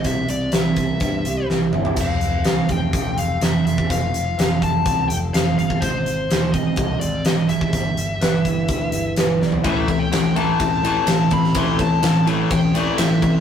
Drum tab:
CC |----------------|x---------------|----------------|----------------|
RD |----------------|----------------|----------------|----------------|
HH |x-x-x-x-x-x-----|x-x-x-x-x-x-x-x-|x-x-x-x-x-x-x-x-|x-x-x-x-x-x-x-x-|
SD |----o-------o---|----o-------o---|----o-------o---|----o-------o---|
T2 |--------------o-|----------------|----------------|----------------|
FT |---------------o|----------------|----------------|----------------|
BD |o-----o-o-------|o-----o-o------o|o-----o-o------o|o-----o-o------o|

CC |----------------|----------------|----------------|
RD |----------------|x-x-x-x-x-x-x-x-|x-x-x-x-x-x-x-x-|
HH |x-x-x-x-x-x-x---|----------------|----------------|
SD |----o-------o-o-|----o-------o--o|----o-------o---|
T2 |----------------|----------------|----------------|
FT |---------------o|----------------|----------------|
BD |o-----o-o-------|o-o-----o-----o-|o-o-----o-----o-|